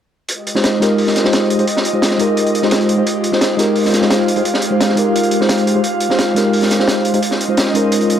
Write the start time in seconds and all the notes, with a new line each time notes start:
0.29 G#3 F4 G4 D#5, closed hi-hat
0.47 closed hi-hat
0.55 G#3 D#4 F4 G4 C5, snare
0.64 snare, closed hi-hat
0.80 G#3 D#4 F4 G4 A#4, snare, closed hi-hat
0.98 open hi-hat
1.07 snare
1.16 snare, closed hi-hat
1.24 G#3 D#4 F4 G4 C5, snare
1.33 snare, closed hi-hat
1.50 closed hi-hat
1.59 G#3 D#4 F4 G4 C5, closed hi-hat
1.67 closed hi-hat
1.77 snare
1.85 closed hi-hat
1.93 G#3 D#4 F4 G4 C5
2.02 snare, closed hi-hat
2.11 snare
2.18 G#3 D#4 F4 G4 A#4, closed hi-hat
2.37 closed hi-hat
2.47 closed hi-hat
2.55 closed hi-hat
2.62 G#3 D#4 F4 G4 C5, snare
2.71 snare, closed hi-hat
2.81 closed hi-hat
2.89 closed hi-hat
2.97 G#3 D#4 F4 G4 C5
3.07 closed hi-hat
3.24 closed hi-hat
3.32 G#3 D#4 F4 G4 C5, snare
3.41 snare, closed hi-hat
3.57 G#3 D#4 F4 G4 A#4, snare, closed hi-hat
3.75 F5, open hi-hat
3.85 snare
3.93 snare, closed hi-hat
4.01 G#3 D#4 F4 G4 C5, snare
4.10 snare, closed hi-hat
4.28 closed hi-hat
4.36 G#3 D#4 F4 G4 C5, closed hi-hat
4.45 closed hi-hat
4.54 snare
4.62 closed hi-hat
4.70 G#3 D#4 F4 G4 C5
4.80 snare, closed hi-hat
4.89 snare
4.96 G#3 D#4 F4 G4 A#4, closed hi-hat
5.16 closed hi-hat
5.23 closed hi-hat
5.31 closed hi-hat
5.40 G#3 D#4 F4 G4 C5, snare
5.49 snare, closed hi-hat
5.58 closed hi-hat
5.67 closed hi-hat
5.75 G#3 D#4 F4 G4 C5
5.84 closed hi-hat
6.00 closed hi-hat
6.09 G#3 D#4 F4 G4 C5, snare
6.19 snare, closed hi-hat
6.34 G#3 D#4 F4 G4 A#4, snare, closed hi-hat
6.53 open hi-hat
6.62 snare
6.71 snare, closed hi-hat
6.79 G#3 D#4 F4 G4 C5, snare
6.88 snare, closed hi-hat
7.05 closed hi-hat
7.13 G#3 D#4 F4 G4 C5, closed hi-hat
7.22 C#4 F4 C5 D#5, closed hi-hat
7.31 snare
7.41 closed hi-hat
7.48 G#3 C#4 D#4 F4 C5
7.57 snare, closed hi-hat
7.66 snare
7.73 G#3 C#4 D#4 F4 A#4, closed hi-hat
7.92 closed hi-hat
8.01 closed hi-hat
8.10 closed hi-hat